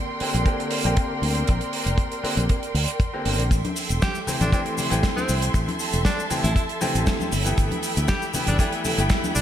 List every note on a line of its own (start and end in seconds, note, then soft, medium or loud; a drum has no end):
0.00 0.18 D3 medium
0.00 0.18 A#3 medium
0.00 0.18 C4 medium
0.00 0.19 G4 medium
0.00 3.48 A#4 medium
0.00 3.48 D5 medium
0.00 5.51 G5 medium
0.00 3.47 C6 medium
0.20 0.43 D3 medium
0.20 0.43 A#3 medium
0.20 0.43 C4 medium
0.20 0.44 G4 medium
0.20 muted fingered electric bass stroke soft
0.20 open hi-hat loud
0.34 0.43 A#1 medium
0.34 closed hi-hat medium
0.46 0.82 D3 medium
0.46 0.82 A#3 medium
0.46 0.82 C4 medium
0.46 0.82 G4 medium
0.46 kick loud
0.46 closed hi-hat medium
0.60 closed hi-hat soft
0.71 open hi-hat loud
0.84 0.94 A#1 medium
0.84 2.21 D3 medium
0.84 2.21 A#3 medium
0.84 2.21 C4 medium
0.84 2.22 G4 medium
0.84 closed hi-hat medium
0.97 kick loud
0.97 closed hi-hat medium
1.22 1.42 D2 medium
1.22 open hi-hat loud
1.35 closed hi-hat medium
1.47 1.58 A#1 medium
1.47 kick loud
1.47 closed hi-hat medium
1.61 closed hi-hat soft
1.73 open hi-hat medium
1.86 1.96 F1 medium
1.86 closed hi-hat medium
1.98 kick loud
1.98 closed hi-hat medium
2.12 closed hi-hat medium
2.23 2.39 D3 medium
2.23 2.39 A#3 medium
2.23 2.40 C4 medium
2.23 2.40 G4 medium
2.23 muted fingered electric bass stroke soft
2.23 open hi-hat loud
2.37 2.46 A#1 loud
2.37 closed hi-hat medium
2.49 kick loud
2.49 closed hi-hat medium
2.63 closed hi-hat medium
2.74 2.85 D2 loud
2.74 open hi-hat loud
2.88 closed hi-hat medium
3.00 kick loud
3.00 closed hi-hat medium
3.13 3.49 D3 medium
3.13 3.50 A#3 medium
3.13 3.50 C4 medium
3.13 3.50 G4 medium
3.25 3.39 G1 loud
3.25 open hi-hat loud
3.39 3.48 A#1 medium
3.39 closed hi-hat medium
3.50 3.61 A1 medium
3.50 9.42 A4 medium
3.50 9.42 E5 medium
3.50 7.28 C6 medium
3.50 kick loud
3.50 closed hi-hat medium
3.50 shaker medium
3.65 closed hi-hat soft
3.65 high conga medium
3.76 open hi-hat loud
3.76 shaker medium
3.89 3.99 E1 medium
3.89 closed hi-hat medium
3.89 shaker soft
4.02 4.19 G4 medium
4.02 kick loud
4.02 snare loud
4.02 closed hi-hat medium
4.02 high conga medium
4.02 shaker medium
4.15 shaker soft
4.27 4.50 E3 medium
4.27 4.50 A3 medium
4.27 4.50 C4 medium
4.27 4.50 G4 medium
4.27 muted fingered electric bass stroke soft
4.27 open hi-hat loud
4.27 low conga medium
4.27 shaker medium
4.41 4.50 A1 loud
4.41 4.49 D4 medium
4.41 closed hi-hat medium
4.41 high conga medium
4.41 shaker soft
4.52 4.88 E3 medium
4.52 4.88 A3 medium
4.52 4.89 C4 medium
4.52 4.61 D4 medium
4.52 4.89 G4 loud
4.52 kick loud
4.52 closed hi-hat medium
4.52 shaker medium
4.66 closed hi-hat soft
4.78 open hi-hat loud
4.78 high conga medium
4.78 low conga medium
4.78 shaker medium
4.90 5.01 A1 medium
4.90 6.27 E3 medium
4.90 6.28 A3 medium
4.90 6.28 C4 medium
4.90 6.28 G4 medium
4.90 closed hi-hat medium
4.90 shaker medium
5.03 kick loud
5.03 snare loud
5.03 closed hi-hat medium
5.03 shaker medium
5.16 5.32 C4 medium
5.16 high conga medium
5.16 shaker soft
5.29 5.49 C2 medium
5.29 open hi-hat loud
5.29 shaker medium
5.42 closed hi-hat medium
5.42 shaker soft
5.54 5.65 A1 medium
5.54 7.31 A5 medium
5.54 kick loud
5.54 closed hi-hat medium
5.54 shaker medium
5.68 closed hi-hat medium
5.68 high conga medium
5.79 open hi-hat loud
5.79 shaker medium
5.93 6.03 E1 loud
5.93 closed hi-hat medium
5.93 shaker soft
6.05 6.22 D4 medium
6.05 kick loud
6.05 snare loud
6.05 closed hi-hat medium
6.05 high conga medium
6.05 shaker medium
6.20 shaker soft
6.30 6.46 E3 medium
6.30 6.46 A3 medium
6.30 6.46 C4 medium
6.30 6.47 G4 medium
6.30 muted fingered electric bass stroke soft
6.30 open hi-hat medium
6.30 low conga medium
6.30 shaker medium
6.43 6.53 A1 loud
6.43 6.51 E4 medium
6.43 closed hi-hat medium
6.43 high conga medium
6.43 shaker medium
6.56 6.64 E4 medium
6.56 kick loud
6.56 closed hi-hat medium
6.56 shaker medium
6.69 closed hi-hat medium
6.81 7.31 E3 medium
6.81 7.31 A3 medium
6.81 7.31 C4 medium
6.81 7.31 G4 loud
6.81 open hi-hat medium
6.81 high conga medium
6.81 low conga medium
6.81 shaker medium
6.95 7.04 A1 medium
6.95 closed hi-hat medium
6.95 shaker soft
7.07 kick loud
7.07 snare loud
7.07 closed hi-hat medium
7.07 shaker medium
7.20 high conga medium
7.20 shaker soft
7.32 7.52 G1 medium
7.32 9.42 G5 medium
7.32 9.42 B5 medium
7.32 open hi-hat loud
7.32 shaker medium
7.44 8.30 E3 medium
7.44 8.31 A3 medium
7.44 8.31 B3 medium
7.44 8.31 G4 medium
7.44 closed hi-hat medium
7.44 shaker soft
7.58 7.68 G1 medium
7.58 kick loud
7.58 closed hi-hat medium
7.58 shaker medium
7.71 closed hi-hat medium
7.71 high conga medium
7.83 open hi-hat medium
7.83 shaker medium
7.97 8.06 D2 medium
7.97 closed hi-hat medium
7.97 shaker soft
8.08 8.25 G4 medium
8.08 kick loud
8.08 snare loud
8.08 closed hi-hat medium
8.08 high conga medium
8.08 shaker medium
8.22 shaker soft
8.34 8.56 E3 medium
8.34 8.57 A3 medium
8.34 8.57 B3 medium
8.34 8.57 G4 medium
8.34 muted fingered electric bass stroke soft
8.34 open hi-hat loud
8.34 low conga medium
8.34 shaker medium
8.47 8.57 G1 loud
8.47 8.55 D4 medium
8.47 closed hi-hat medium
8.47 high conga medium
8.47 shaker soft
8.59 8.95 E3 loud
8.59 8.95 A3 medium
8.59 8.95 B3 medium
8.59 8.68 D4 medium
8.59 8.96 G4 loud
8.59 kick loud
8.59 closed hi-hat medium
8.59 shaker medium
8.72 closed hi-hat soft
8.85 open hi-hat loud
8.85 high conga medium
8.85 low conga medium
8.85 shaker medium
8.97 9.08 G1 medium
8.97 9.42 E3 medium
8.97 9.42 A3 medium
8.97 9.42 B3 medium
8.97 9.42 G4 loud
8.97 closed hi-hat medium
8.97 shaker medium
9.10 kick loud
9.10 snare loud
9.10 closed hi-hat medium
9.10 shaker medium
9.24 high conga medium
9.24 shaker medium
9.35 9.42 B1 medium
9.35 9.42 D4 medium
9.35 open hi-hat loud
9.35 shaker medium